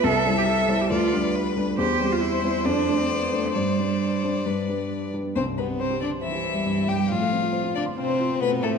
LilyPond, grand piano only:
\new Staff \with { instrumentName = "Grand piano" } { \time 4/4 \key c \major \tempo 4 = 138 c,8 <g e' c''>4 <g e' c''>8 d,8 <g d' b'>4 <g d' b'>8 | e,8 <g c' c''>4 <g c' c''>8 f,8 <a d' c''>4 <a d' c''>8 | g,8 <g d' c''>4 <g d' c''>8 g,8 <g d' b'>4 <g d' b'>8 | c,16 g,16 g16 c'16 c''16 g'16 c''16 c'''16 c''16 g'16 c''16 g16 g,16 g16 g,16 g16 |
a,16 a16 c'16 f'16 c''16 f'16 f''16 c'''16 f''16 c''16 f'16 c'16 a16 c'16 a16 c'16 | }